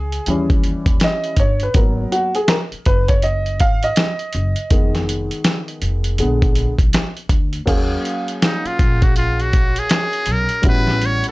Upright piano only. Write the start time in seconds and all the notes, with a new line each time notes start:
Already playing: G#4
0.28 E3 G3 C#4
1.04 D#5
1.40 C#5
1.63 B4
1.75 F#3 A#3 B3 A#4
2.12 F#4
2.35 G#4
2.49 A#4
2.86 B4
3.08 C#5
3.23 D#5
3.60 F5
3.84 D#5
4.70 D#3 G#3 B3
6.19 D3 G#3 B3
7.66 F#3 A#3 C#4 G#4 F5
10.62 G3 B3 C#4 E4 F#4